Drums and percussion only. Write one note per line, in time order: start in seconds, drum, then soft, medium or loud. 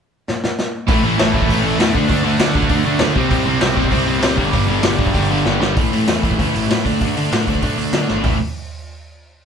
0.28 snare medium
0.44 snare medium
0.59 snare medium
0.88 kick loud
0.88 open hi-hat medium
1.19 snare loud
1.19 open hi-hat medium
1.34 kick medium
1.42 kick medium
1.49 kick medium
1.49 open hi-hat medium
1.80 snare loud
1.80 open hi-hat medium
1.95 kick medium
2.09 kick medium
2.09 open hi-hat medium
2.39 snare loud
2.39 open hi-hat medium
2.55 kick medium
2.63 kick medium
2.69 kick medium
2.69 open hi-hat medium
2.99 snare loud
2.99 open hi-hat medium
3.16 kick medium
3.31 kick loud
3.31 open hi-hat medium
3.61 snare loud
3.61 open hi-hat medium
3.77 kick medium
3.84 kick medium
3.92 kick medium
3.92 open hi-hat medium
4.22 snare loud
4.22 open hi-hat medium
4.38 kick medium
4.53 kick medium
4.53 open hi-hat medium
4.83 snare loud
4.83 open hi-hat medium
4.99 kick medium
5.07 kick medium
5.14 kick medium
5.14 open hi-hat medium
5.45 snare medium
5.62 snare loud
5.77 kick loud
5.77 open hi-hat medium
5.93 open hi-hat medium
6.08 snare loud
6.08 open hi-hat medium
6.23 kick medium
6.23 open hi-hat medium
6.31 kick medium
6.39 kick medium
6.39 open hi-hat medium
6.56 open hi-hat medium
6.71 snare loud
6.71 open hi-hat medium
6.86 kick medium
6.86 open hi-hat medium
7.01 kick medium
7.01 open hi-hat medium
7.17 open hi-hat medium
7.33 snare loud
7.33 open hi-hat medium
7.47 kick medium
7.47 open hi-hat medium
7.55 kick medium
7.62 kick medium
7.62 open hi-hat medium
7.78 open hi-hat medium
7.93 snare loud
7.93 open hi-hat medium
8.08 snare medium
8.24 kick medium
8.24 floor tom medium
8.24 open hi-hat medium